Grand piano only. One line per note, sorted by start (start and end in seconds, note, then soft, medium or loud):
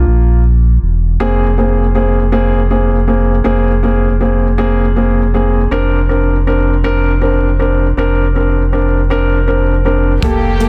0.00 0.41 A#3 medium
0.00 0.40 F4 medium
1.20 1.46 A#3 medium
1.20 1.46 C4 medium
1.20 1.46 G#4 medium
1.58 1.83 A#3 medium
1.58 1.84 C4 medium
1.58 1.84 G#4 medium
1.95 2.21 A#3 medium
1.95 2.21 C4 medium
1.95 2.21 G#4 medium
2.32 2.58 A#3 medium
2.32 2.58 C4 medium
2.32 2.59 G#4 medium
2.70 2.96 A#3 medium
2.70 2.96 C4 medium
2.70 2.96 G#4 medium
3.07 3.34 A#3 medium
3.07 3.34 C4 medium
3.07 3.34 G#4 medium
3.44 3.71 A#3 medium
3.44 3.71 C4 medium
3.44 3.71 G#4 medium
3.83 4.09 A#3 medium
3.83 4.09 C4 medium
3.83 4.09 G#4 medium
4.20 4.47 A#3 medium
4.20 4.47 C4 medium
4.20 4.47 G#4 medium
4.58 4.84 A#3 medium
4.58 4.84 C4 medium
4.58 4.84 G#4 medium
4.96 5.22 A#3 medium
4.96 5.22 C4 medium
4.96 5.22 G#4 medium
5.34 5.60 A#3 medium
5.34 5.60 C4 medium
5.34 5.60 G#4 medium
5.71 5.97 C4 medium
5.71 5.97 D4 medium
5.71 5.98 A#4 medium
6.09 6.35 C4 medium
6.09 6.35 D4 medium
6.09 6.35 A#4 medium
6.47 6.73 C4 medium
6.47 6.73 D4 medium
6.47 6.73 A#4 medium
6.84 7.10 C4 medium
6.84 7.10 D4 medium
6.84 7.10 A#4 medium
7.21 7.47 C4 medium
7.21 7.48 D4 medium
7.21 7.48 A#4 medium
7.59 7.85 C4 medium
7.59 7.85 D4 medium
7.59 7.86 A#4 medium
7.97 8.23 C4 medium
7.97 8.23 D4 medium
7.97 8.24 A#4 medium
8.35 8.61 C4 medium
8.35 8.61 D4 medium
8.35 8.61 A#4 medium
8.72 8.98 C4 medium
8.72 8.98 D4 medium
8.72 8.99 A#4 medium
9.10 9.36 C4 medium
9.10 9.36 D4 medium
9.10 9.36 A#4 medium
9.47 9.73 C4 medium
9.47 9.74 D4 medium
9.47 9.73 A#4 medium
9.85 10.11 C4 medium
9.85 10.11 D4 medium
9.85 10.11 A#4 medium
10.23 10.49 A#3 medium
10.23 10.49 G4 medium
10.23 10.49 A4 medium
10.60 10.69 A#3 medium
10.60 10.69 G4 medium
10.60 10.69 A4 medium